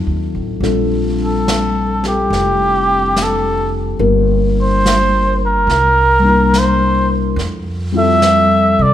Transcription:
Already playing: tine electric piano F#3 C4 D#4 F4 A4
0.07 upright bass D#2
0.35 upright bass A1
0.60 upright bass A#1, tine electric piano G3 C4 D4 F4 A4, brush sweep, snare
1.25 muted trumpet A4
1.48 snare, hi-hat pedal
2.03 tine electric piano C4 E4 G4, snare
2.08 muted trumpet G4
2.30 upright bass F1, brush sweep, snare
3.16 snare, hi-hat pedal
3.23 muted trumpet A4
3.99 upright bass G1, tine electric piano G3 A#3 D4 F4 A#4, brush sweep
4.61 muted trumpet C5
4.86 snare, hi-hat pedal
5.46 muted trumpet A#4
5.67 upright bass C2, brush sweep, snare
6.20 tine electric piano G3 A#3
6.25 tine electric piano D4 E4
6.31 tine electric piano A#4
6.54 snare, hi-hat pedal
6.59 muted trumpet C5
7.36 upright bass F2, brush sweep, snare
7.93 tine electric piano G3 C4 E4 F4
7.98 tine electric piano A4, muted trumpet E5
8.22 snare, hi-hat pedal
8.79 upright bass C3, muted trumpet D5

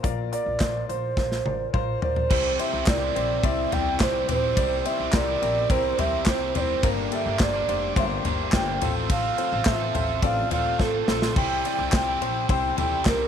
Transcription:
Already playing: grand piano F4 A#4 C5 D5
0.03 upright bass A#1, grand piano A#2 F4 A#4 D5, kick, closed hi-hat
0.32 grand piano F4 A#4 D5, ocarina D5, closed hi-hat
0.46 upright bass A#1
0.60 upright bass A#1, grand piano F4 A#4 C5, kick, snare, clap, closed hi-hat
0.88 upright bass A#1, grand piano F4 A#4 C5, ocarina C5, closed hi-hat
1.17 upright bass A#1, grand piano F4 A#4 C5, kick, snare
1.32 snare
1.45 upright bass A1, grand piano F4 A#4 D5, high tom
1.73 upright bass A#1, grand piano F4 A#4 C5, ocarina C5, kick, mid tom
2.02 upright bass A#1, grand piano F4 A#4 D5, ocarina C5, floor tom
2.16 floor tom
2.30 upright bass C2, tonewheel organ C3 E3 G3 E4 G4, overdriven electric guitar C3 G3 C4 E4 G4, grand piano C3 C4 E4 G4 C5, kick, crash
2.58 grand piano C4 E4 G4 C5, ocarina E5, ride
2.73 upright bass C2, overdriven electric guitar C4 E4 G4
2.86 upright bass C2, grand piano C4 E4 G4 A#4, ocarina D5, kick, snare, clap, ride
3.00 overdriven electric guitar C4 E4 G4
3.15 upright bass A#1, grand piano C4 E4 G4 C5, ride
3.43 upright bass C2, grand piano C4 E4 G4 D5, ocarina E5, kick, ride
3.71 upright bass C2, overdriven electric guitar G3 C4 E4 G4, grand piano C4 E4 G4 D5, ocarina G5, floor tom, ride
3.99 upright bass C2, overdriven electric guitar G3 C4 E4 G4, grand piano C4 E4 G4 C5, ocarina C5, kick, snare, clap, ride
4.28 upright bass A#1, overdriven electric guitar G3 C4 E4 G4, grand piano C4 E4 G4 C5, ocarina C5, floor tom, ride
4.56 upright bass C2, overdriven electric guitar C3 G3 C4 E4 G4, grand piano C3 C4 E4 G4 D5, kick, ride
4.85 grand piano C4 E4 G4 C5, ocarina E5, ride
4.98 upright bass C2, overdriven electric guitar C4 E4 G4
5.13 upright bass C2, grand piano C4 E4 G4 A#4, ocarina D5, kick, snare, clap, ride
5.27 overdriven electric guitar C4 E4 G4
5.42 upright bass A#1, grand piano C4 E4 G4 A#4, ride
5.70 upright bass C2, grand piano C4 E4 G4 A#4, ocarina C5, kick, ride
5.97 upright bass C2, overdriven electric guitar G3 C4 E4 G4, grand piano C4 E4 G4 C5, ocarina E5, floor tom, ride
6.26 upright bass C2, overdriven electric guitar G3 C4 E4 G4, grand piano C4 E4 G4 C5, ocarina C5, kick, snare, clap, ride
6.54 upright bass F1, overdriven electric guitar G3 C4 E4 G4, grand piano C4 E4 G4 C5, ocarina D5, floor tom, ride
6.60 ocarina C5
6.83 upright bass G1, overdriven electric guitar G2 D3 G3 A#3 D4 G4, grand piano G2 A#3 D4 G4 A#4, tonewheel organ A#2 D3 D4, kick, ride
7.11 grand piano A#3 D4 G4 A4, ocarina E5, ride
7.25 upright bass G1, overdriven electric guitar G3 A#3 D4 G4
7.39 upright bass G1, grand piano A#3 D4 G4 C5, ocarina D5, kick, snare, clap, ride
7.54 overdriven electric guitar G3 A#3 D4 G4
7.68 upright bass F1, grand piano A#3 D4 G4 C5, ride
7.96 upright bass G1, grand piano A#3 D4 G4 C5, ocarina E5, kick, ride
8.24 upright bass G1, overdriven electric guitar G3 A#3 D4 G4, grand piano A#3 D4 G4 C5, floor tom, ride
8.52 upright bass G1, overdriven electric guitar G3 A#3 D4 G4, grand piano A#3 D4 G4 C5, ocarina G5, kick, snare, clap, ride
8.81 upright bass A1, grand piano A2 C4 F4 A4 C5, tonewheel organ C3 F3 A3 F4 A4, overdriven electric guitar A3 C4 F4 A4, floor tom, ride
9.10 overdriven electric guitar A3 C4 F4 A4, ocarina F5, kick, ride
9.38 grand piano C4 F4 A4 C5, ride
9.51 upright bass A1, overdriven electric guitar C4 F4 A4
9.65 upright bass A1, grand piano C4 F4 A4 C5, ocarina E5, kick, snare, clap, ride
9.80 overdriven electric guitar C4 F4 A4
9.94 upright bass A1, grand piano C4 F4 A4 C5, floor tom, ride
10.22 upright bass A1, grand piano C4 F4 A4 D5, ocarina F5, kick, ride
10.51 upright bass A#1, overdriven electric guitar A3 C4 F4 A4, grand piano C4 F4 A4 C5, ocarina F5, floor tom, ride
10.79 upright bass A1, overdriven electric guitar A3 C4 F4 A4, grand piano C4 F4 A4 C5, ocarina A4, kick, snare
11.08 upright bass A#1, overdriven electric guitar A3 C4 F4 A4, grand piano C4 F4 A4 C5, snare
11.22 snare
11.36 upright bass C2, overdriven electric guitar C3 G3 C4 E4 G4, grand piano C3 C4 E4 G4 C5, tonewheel organ E3 G3 E4 G4, ocarina G5, kick, crash
11.65 grand piano C4 E4 G4 D5, ride
11.78 upright bass C2, overdriven electric guitar C4 E4 G4
11.92 upright bass C2, grand piano C4 E4 G4 C5, ocarina G5, kick, snare, clap, ride
12.06 overdriven electric guitar C4 E4 G4
12.21 upright bass A#1, grand piano C4 E4 G4 C5, ride
12.49 upright bass C2, grand piano C4 E4 G4 C5, ocarina G5, kick, ride
12.77 upright bass C2, overdriven electric guitar G3 C4 E4 G4, grand piano C4 E4 G4 A4, ocarina G5, floor tom, ride
13.05 upright bass C2, overdriven electric guitar G3 C4 E4 G4, grand piano C4 E4 G4 C5, ocarina A#4, kick, snare, clap, ride

